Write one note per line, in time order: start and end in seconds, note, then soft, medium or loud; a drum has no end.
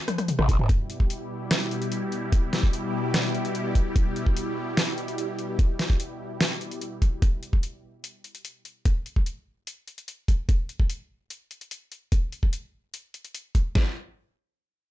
0.08 cross-stick medium
0.08 closed hi-hat medium
0.08 high tom medium
0.18 cross-stick medium
0.18 closed hi-hat medium
0.18 high tom medium
0.28 closed hi-hat medium
0.28 mid tom medium
0.39 0.57 A1 loud
0.39 cross-stick medium
0.39 mid tom medium
0.49 kick medium
0.49 closed hi-hat medium
0.59 0.68 F1 loud
0.59 mid tom medium
0.69 7.18 B2 medium
0.69 7.18 G3 medium
0.69 7.18 E4 medium
0.69 7.18 G4 medium
0.69 kick loud
0.69 closed hi-hat medium
0.90 closed hi-hat medium
1.00 kick medium
1.10 closed hi-hat medium
1.51 snare loud
1.51 closed hi-hat medium
1.71 closed hi-hat medium
1.82 closed hi-hat medium
1.92 closed hi-hat medium
2.12 closed hi-hat medium
2.32 kick loud
2.32 closed hi-hat medium
2.53 snare medium
2.53 closed hi-hat medium
2.63 kick medium
2.73 closed hi-hat medium
3.14 snare loud
3.14 closed hi-hat medium
3.34 closed hi-hat medium
3.45 closed hi-hat medium
3.55 closed hi-hat medium
3.75 kick medium
3.75 closed hi-hat medium
3.96 kick loud
3.96 closed hi-hat medium
4.16 closed hi-hat soft
4.26 kick medium
4.37 closed hi-hat medium
4.77 snare loud
4.77 closed hi-hat medium
4.98 closed hi-hat medium
5.08 closed hi-hat medium
5.18 closed hi-hat medium
5.39 closed hi-hat soft
5.59 kick loud
5.59 closed hi-hat medium
5.79 snare medium
5.79 closed hi-hat soft
5.90 kick medium
6.00 closed hi-hat medium
6.41 snare loud
6.41 closed hi-hat medium
6.61 closed hi-hat soft
6.71 closed hi-hat soft
6.81 closed hi-hat medium
7.02 kick medium
7.02 closed hi-hat soft
7.22 kick loud
7.22 closed hi-hat medium
7.43 closed hi-hat soft
7.53 kick medium
7.63 closed hi-hat medium
8.04 closed hi-hat medium
8.24 closed hi-hat soft
8.35 closed hi-hat soft
8.45 closed hi-hat medium
8.65 closed hi-hat soft
8.85 kick loud
8.85 closed hi-hat medium
9.06 closed hi-hat soft
9.16 kick medium
9.26 closed hi-hat medium
9.67 closed hi-hat medium
9.88 closed hi-hat soft
9.98 closed hi-hat soft
10.08 closed hi-hat medium
10.28 kick medium
10.28 closed hi-hat soft
10.49 kick loud
10.49 closed hi-hat medium
10.69 closed hi-hat soft
10.80 kick medium
10.90 closed hi-hat medium
11.30 closed hi-hat medium
11.51 closed hi-hat soft
11.61 closed hi-hat soft
11.71 closed hi-hat medium
11.92 closed hi-hat soft
12.12 kick loud
12.12 closed hi-hat medium
12.32 closed hi-hat soft
12.43 kick medium
12.53 closed hi-hat medium
12.94 closed hi-hat medium
13.14 closed hi-hat medium
13.25 closed hi-hat medium
13.35 closed hi-hat medium
13.55 kick medium
13.55 closed hi-hat medium
13.75 kick loud
13.75 snare loud